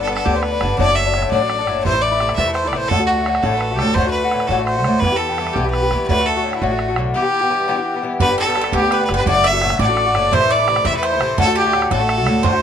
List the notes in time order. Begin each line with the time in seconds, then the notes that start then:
Already playing: G1
0.00 D3 B3 A4
0.07 G2 D3 B3 D4, bodhran
0.14 A4, bodhran
0.25 D2 G2 D3 B3 D4 G4, bodhran
0.34 D3 B3 D4 C5
0.42 B4, bodhran
0.52 D3 B3 D4
0.61 G1 G2 D3 B3 D4, bodhran
0.78 F#1 A2 F#3 A3 D4 D5, bodhran
0.88 F#3 A3 D4
0.95 E5
1.06 F#3 A3 D4
1.14 A2 F#3 A3 D4, bodhran
1.22 bodhran
1.31 A1 A2 F#3 A3 D4 D5, bodhran
1.41 F#3 A3 D4
1.50 bodhran
1.59 F#3 A3 D4
1.67 F#1 A2 F#3 A3 D4, bodhran
1.84 A1 C3 E3 A3 E4 C5, bodhran
1.93 E3 A3 E4
2.02 D5
2.11 E3 A3 E4
2.20 C3 E3 A3 E4, bodhran
2.29 bodhran
2.36 E2 C3 E3 A3 E4 E5, bodhran
2.47 E3 A3 E4
2.53 C5, bodhran
2.64 E3 A3 E4 D5
2.73 A1 C3 E3 A3 E4 C5, bodhran
2.88 D2 A2 D3 A3 F#4 A4, bodhran
2.99 D3 A3 F#4
3.07 F#4
3.18 D3 A3 F#4
3.26 A2 D3 A3 F#4, bodhran
3.35 bodhran
3.43 A1 A2 D3 A3 F#4 A4, bodhran
3.53 D3 A3 F#4
3.57 A4 B4, bodhran
3.71 D3 A3 F#4
3.76 D2 A2 G4 A4, bodhran
3.80 D3 A3 F#4
3.94 D2 A2 D3 A3 C5, bodhran
3.98 F#4
4.06 D3 A3 F#4
4.11 B4
4.24 D3 A3 F#4
4.31 A2 D3 A3 F#4, bodhran
4.40 bodhran
4.47 A1 A2 D3 A4, bodhran
4.51 A3 F#4
4.58 D3 A3 F#4
4.65 C5, bodhran
4.77 D3 A3 F#4
4.84 D2 A2 D3 A3 F#4, bodhran
4.99 E2 G2 B4, bodhran
5.04 E3 B3 G4
5.12 E3 B3 G4
5.16 A4
5.29 E3 B3 G4
5.38 G2 E3 B3 G4, bodhran
5.47 bodhran
5.53 B1 G2 E3 B3 G4, bodhran
5.57 G4
5.64 E3 B3 G4
5.70 B4, bodhran
5.82 E3 B3 G4
5.91 E2 G2 E3 B3 G4, bodhran
6.07 D2 A2 D3 A3 F#4 B4, bodhran
6.19 D3 A3 F#4
6.26 A4
6.36 D3 A3 F#4
6.44 A2 D3 A3 F#4
6.53 E4, bodhran
6.62 A1 A2 D3 A3 F#4, bodhran
6.71 D3 A3 F#4
6.79 bodhran
6.88 D3 A3 F#4
6.96 B1 A2 D3 A3 F#4, bodhran
7.14 G2 E3 B3 G4
7.22 E3 B3 G4
7.41 E3 B3 G4
7.50 G2 E3 B3 G4
7.68 G2 E3 B3 G4
7.76 E3 B3 G4
7.94 E3 B3 G4
8.02 G2 E3 B3 G4
8.20 G1 G2 D3 B3 G4 B4, bodhran
8.29 D3 B3 G4
8.38 A4
8.46 D3 B3 G4 A4
8.55 G2 D3 B3 G4, bodhran
8.61 A4, bodhran
8.72 D2 G2 D3 B3 G4, bodhran
8.81 D3 B3 G4
8.91 B4, bodhran
8.99 D3 B3 G4
9.05 G2 B4, bodhran
9.09 G1 D3 B3 G4
9.14 B4
9.26 F#1 A2 D3 A3 F#4 D5, bodhran
9.36 D3 A3 F#4
9.44 E5
9.52 D3 A3 F#4
9.61 A2 D3 A3 F#4, bodhran
9.70 bodhran
9.79 A1 A2 D3 A3 F#4 D5, bodhran
9.88 D3 A3 F#4
9.97 bodhran
10.06 D3 A3 F#4
10.14 F#1 A2 D3 A3 F#4, bodhran
10.32 A1 C3 E3 A3 E4 C5, bodhran
10.41 E3 A3 E4
10.50 D5
10.59 E3 A3 E4
10.67 C3 E3 A3 E4, bodhran
10.76 bodhran
10.85 E2 C3 E3 A3 E4 E5, bodhran
10.93 E3 A3 E4 B4
11.03 C5, bodhran
11.12 E3 A3 E4
11.20 A1 C3 E3 A3 E4, bodhran
11.38 D2 A2 D3 A3 F#4 A4, bodhran
11.47 D3 A3 F#4
11.56 G4
11.65 D3 A3 F#4
11.73 A2 D3 A3 F#4, bodhran
11.82 bodhran
11.91 A1 A2 D3 A3 F#4 A4, bodhran
12.00 D3 A3 F#4
12.09 bodhran
12.17 D3 A3 F#4
12.26 D2 A2 D3 A3 F#4, bodhran
12.43 D2 A2 D3 A3 F#4 C5, bodhran
12.53 D3 A3 F#4